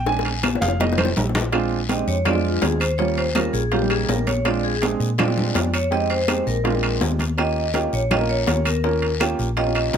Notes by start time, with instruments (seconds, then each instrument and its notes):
Already playing: fingered electric bass A#1
0.06 grand piano G#3 C4 D4 G#5, high bongo, high conga, long guiro
0.19 high bongo
0.25 high conga, high timbale
0.43 low bongo, high conga, high timbale, low timbale, short guiro, claves
0.55 low bongo
0.61 fingered electric bass F1, grand piano F5, high conga, short guiro
0.68 low bongo
0.80 grand piano G3 A3 D#4 D#5, low bongo, high conga, high timbale, long guiro
0.93 low bongo
0.98 grand piano C5, low conga, high timbale, claves
1.05 low bongo
1.16 fingered electric bass A#1, low conga, low timbale, short guiro
1.29 low bongo
1.35 low conga, high timbale, short guiro
1.41 low bongo
1.52 grand piano G#3 C4 D4 F4, high bongo, high conga, high timbale, long guiro, claves
1.72 high conga
1.89 grand piano G#3 C4 D4 G4, vibraphone D#5, high bongo, high conga, high timbale, low timbale, short guiro
2.07 fingered electric bass F2, vibraphone C#5, short guiro
2.25 grand piano G#3 C4 D4 F4, vibraphone D5, high bongo, high conga, low conga, high timbale, long guiro, claves
2.34 grand piano G#3 C4 D4 F4
2.44 vibraphone F4, high conga
2.62 fingered electric bass D#2, vibraphone G#4, high bongo, low bongo, high conga, high timbale, low timbale, short guiro
2.80 vibraphone C5, high timbale, short guiro, claves
2.98 grand piano G3 A#3 C#4 F4, vibraphone C#5, high bongo, high conga, long guiro
3.17 vibraphone C5, high conga, high timbale
3.35 grand piano G3 A#3 C#4 F4, vibraphone A#4, high bongo, high conga, high timbale, low timbale, short guiro, claves
3.53 fingered electric bass A#1, vibraphone G#4, high bongo, high conga, short guiro
3.72 grand piano G3 A#3 C#4 F4, vibraphone G4, high bongo, high conga, high timbale, long guiro
3.81 grand piano G3 A#3 C#4 D#4
3.90 vibraphone G#4, high bongo, high conga, high timbale, claves
4.09 fingered electric bass A#1, vibraphone A#4, high bongo, low bongo, high conga, low timbale, short guiro
4.27 vibraphone C#5, high bongo, high conga, high timbale, short guiro
4.45 grand piano G#3 C4 D4 F4, vibraphone D5, high bongo, high conga, high timbale, long guiro, claves
4.64 vibraphone G#4, high conga
4.82 grand piano G#3 C4 D4 G#4, high bongo, high conga, high timbale, low timbale, short guiro
5.00 fingered electric bass A#2, short guiro
5.18 grand piano G#3 C4 D4 F4, vibraphone D5, high bongo, high conga, low conga, high timbale, long guiro, claves
5.28 grand piano G#3 C4 D4 F4
5.38 high conga, low conga
5.55 fingered electric bass F2, high bongo, low bongo, high conga, high timbale, low timbale, short guiro
5.74 vibraphone C#5, high timbale, short guiro, claves
5.91 grand piano G#3 C4 D#4 G4, vibraphone D#5, high bongo, high conga, long guiro
6.10 vibraphone C5, high conga, high timbale
6.28 grand piano G#3 C4 D#4 G4, high bongo, high conga, high timbale, low timbale, short guiro, claves
6.47 fingered electric bass A#1, vibraphone A#4, high bongo, high conga, short guiro
6.64 grand piano G#3 C4 D4 F4, high bongo, high conga, high timbale, long guiro
6.73 grand piano G#3 C4 D4 F4
6.83 high bongo, high conga, high timbale, claves
7.01 fingered electric bass D#2, high bongo, low bongo, high conga, low timbale, short guiro
7.19 high bongo, high conga, high timbale, short guiro
7.37 grand piano A#3 C#4 F4 G4, vibraphone D#5, high bongo, high conga, high timbale, long guiro, claves
7.56 high conga
7.74 grand piano A#3 C#4 F4 G4, high bongo, high conga, high timbale, low timbale, short guiro
7.93 fingered electric bass A#1, vibraphone C#5, short guiro
8.11 grand piano A#3 C#4 F4 G4, vibraphone D#5, high bongo, high conga, low conga, high timbale, long guiro, claves
8.19 grand piano A#3 C#4 F4 A#4
8.29 vibraphone C#5, high conga
8.47 fingered electric bass D#2, high bongo, low bongo, high conga, high timbale, low timbale, short guiro
8.65 vibraphone A#4, high conga, high timbale, short guiro, claves
8.84 grand piano A#3 C#4 F4 A#4, high bongo, high conga, long guiro
9.02 high conga, high timbale
9.20 grand piano A#3 C#4 F4 G4, high bongo, high conga, high timbale, low timbale, short guiro, claves
9.39 fingered electric bass A#1, high bongo, high conga, short guiro
9.57 grand piano A#3 C#4 F4 G4, vibraphone D#5, high bongo, high conga, high timbale, long guiro
9.66 grand piano A#3 C#4 F4 G4
9.75 high bongo, high conga, high timbale, claves
9.93 fingered electric bass A#1, high bongo, low bongo, high conga, low timbale, short guiro